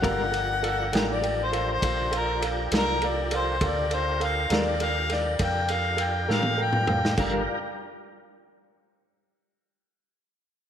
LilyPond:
<<
  \new Staff \with { instrumentName = "Harmonica" } { \time 12/8 \key g \minor \tempo 4. = 67 fis''4.~ fis''16 d''8 c''8 c''8. bes'8 r8 bes'8 d''8 c''8 | d''8 c''8 f''8 d''8 f''8 d''8 g''8 f''8 g''8 f''8 g''4 | r1. | }
  \new Staff \with { instrumentName = "Grand piano" } { \time 12/8 \key g \minor <a' bes' f''>8 <a' bes' f''>8 <a' bes' f''>8 <a' bes' g''>8 <a' bes' g''>8 <a' bes' f''>8 <a' bes' f''>8 <a' bes' f''>8 <a' bes' f''>8 <a' bes' f''>8 <a' bes' f''>8 <a' bes' f''>8 | <a' bes' f''>8 <a' bes' f''>8 <a' bes' f''>8 <a' bes' f''>8 <a' bes' f''>8 <a' bes' f''>8 <a' bes' f''>8 <a' bes' f''>8 <a' bes' f''>8 <a' bes' f''>8 <a' bes' f''>8 <a' bes' f''>8 | <a' bes' f''>8 r1 r4. | }
  \new Staff \with { instrumentName = "Tonewheel organ" } { \time 12/8 \key g \minor <f d' g' bes'>1. | <d' f' g' bes'>1. | <d' f' g' bes'>8 r1 r4. | }
  \new Staff \with { instrumentName = "Clean electric guitar" } { \time 12/8 \key g \minor <g d' f' bes'>8 r4 <g d' f' bes'>8 r2 r8 <g d' f' bes'>8 r4 | r4. <g d' f' bes'>8 r2 r8 <g d' f' bes'>8 r4 | <g d' f' bes'>8 r1 r4. | }
  \new Staff \with { instrumentName = "Fingered electric bass" } { \clef bass \time 12/8 \key g \minor g,,4. a,,4. bes,,4. c,4. | d,4. ees,4. f,4. a,4. | g,,8 r1 r4. | }
  \new DrumStaff \with { instrumentName = "Drums" } \drummode { \time 12/8 <bd cymr>8 cymr8 cymr8 <cymr sn>8 cymr8 cymr8 <bd cymr>8 cymr8 cymr8 <cymr sn>8 cymr8 cymr8 | <bd cymr>8 cymr8 cymr8 <cymr sn>8 cymr8 <cymr sn>8 <bd cymr>8 cymr8 cymr8 sn16 tommh8 toml16 tomfh16 sn16 | <cymc bd>4. r4. r4. r4. | }
>>